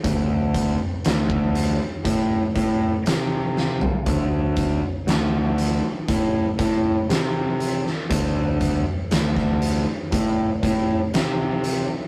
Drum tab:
HH |x-x-x-x-x-x-x---|x-x-x-x-x-x-x-x-|x-x-x-x-x-x-x-x-|
SD |----o-------o-o-|----o-------o--o|----oo------o---|
FT |---------------o|----------------|----------------|
BD |o-o--o--o-o-----|o-o-----o-o-----|o-o--o--o-o-----|